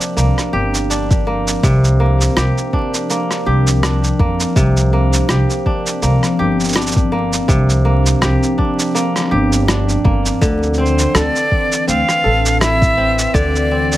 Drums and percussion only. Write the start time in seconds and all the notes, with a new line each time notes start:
0.01 shaker
0.18 shaker
0.38 cross-stick, shaker
0.75 shaker
0.91 shaker
1.11 kick, shaker
1.48 shaker
1.63 kick, shaker
1.84 shaker
2.21 shaker
2.37 cross-stick, shaker
2.58 shaker
2.73 kick
2.94 shaker
3.10 shaker
3.31 cross-stick, shaker
3.67 shaker
3.83 cross-stick, shaker
4.04 shaker
4.20 kick
4.40 shaker
4.56 kick, shaker
4.77 shaker
5.13 shaker
5.29 cross-stick, shaker
5.50 shaker
5.66 kick
5.87 shaker
6.03 shaker
6.23 cross-stick, shaker
6.60 shaker
6.64 shaker
6.68 shaker
6.72 cross-stick, shaker
6.76 shaker
6.81 shaker
6.87 shaker
6.92 shaker
6.96 kick
7.33 shaker
7.49 kick, shaker
7.70 shaker
8.06 shaker
8.22 cross-stick, shaker
8.43 shaker
8.59 kick
8.79 shaker
8.96 shaker
9.16 cross-stick, shaker
9.18 cross-stick
9.20 cross-stick
9.22 cross-stick
9.24 cross-stick
9.26 cross-stick
9.28 cross-stick
9.30 cross-stick
9.53 shaker
9.68 cross-stick, shaker
9.89 shaker
10.05 kick
10.26 shaker
10.42 kick, shaker
10.63 shaker
10.74 shaker
10.86 shaker
10.99 shaker
11.15 cross-stick, shaker
11.36 shaker
11.52 kick
11.72 shaker
11.89 shaker
12.09 cross-stick, shaker
12.46 shaker
12.61 cross-stick, shaker
12.82 kick, shaker
13.19 shaker
13.35 kick, shaker
13.56 shaker
13.92 shaker